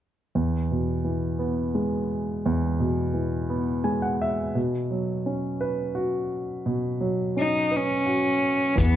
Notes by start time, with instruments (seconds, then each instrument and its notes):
0.35 grand piano E2
0.71 grand piano B2
1.04 grand piano E3
1.39 grand piano B3
1.75 grand piano G#3
2.46 grand piano E2
2.80 grand piano B2
3.14 grand piano E3
3.50 grand piano B3
3.84 grand piano G#3 G#5
4.02 grand piano F#5
4.22 grand piano E5
4.55 grand piano B2
4.91 grand piano F#3
5.26 grand piano C#4
5.61 grand piano B4
5.95 grand piano F#4
6.66 grand piano B2
7.01 grand piano F#3
7.37 grand piano C#4, cello D#4
7.71 grand piano B4
7.77 cello C#4
8.06 grand piano F#4
8.75 fretless electric bass E2, grand piano E3, kick, closed hi-hat
8.82 cello B3